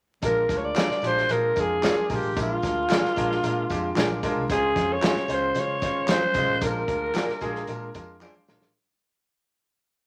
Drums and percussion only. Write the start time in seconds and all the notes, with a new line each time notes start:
0.22 kick, closed hi-hat, tambourine, muted conga
0.49 kick, snare, closed hi-hat, tambourine, muted conga
0.76 snare, clap, closed hi-hat, tambourine, high conga
0.91 snare
1.02 closed hi-hat, tambourine
1.18 snare
1.29 closed hi-hat, muted conga
1.56 kick, closed hi-hat, tambourine, muted conga
1.82 snare, clap, closed hi-hat, tambourine, high conga
1.98 high conga
2.10 kick, open hi-hat, tambourine
2.36 kick, closed hi-hat, tambourine, muted conga
2.62 kick, snare, closed hi-hat, tambourine, muted conga
2.89 snare, clap, closed hi-hat, tambourine, high conga
3.05 snare
3.16 kick, closed hi-hat, tambourine
3.31 snare
3.43 closed hi-hat, tambourine, muted conga
3.69 kick, closed hi-hat, tambourine, muted conga
3.95 snare, clap, closed hi-hat, tambourine, high conga
4.11 high conga
4.23 kick, closed hi-hat, tambourine
4.48 kick, closed hi-hat, tambourine, muted conga
4.76 kick, snare, closed hi-hat, tambourine, muted conga
5.02 snare, clap, closed hi-hat, tambourine, high conga
5.17 snare
5.28 closed hi-hat, tambourine
5.55 closed hi-hat, tambourine, muted conga
5.82 kick, closed hi-hat, tambourine, muted conga
6.07 snare, clap, closed hi-hat, tambourine, high conga
6.22 high conga
6.34 kick, closed hi-hat, tambourine
6.60 kick, closed hi-hat, tambourine, muted conga
6.88 kick, closed hi-hat, muted conga
7.14 snare, clap, closed hi-hat, tambourine, high conga
7.29 snare
7.41 kick, closed hi-hat, tambourine
7.56 snare
7.67 closed hi-hat, tambourine, muted conga
7.94 kick, closed hi-hat, tambourine, muted conga
8.21 clap, tambourine, high conga
8.37 high conga
8.48 snare, tambourine
8.62 snare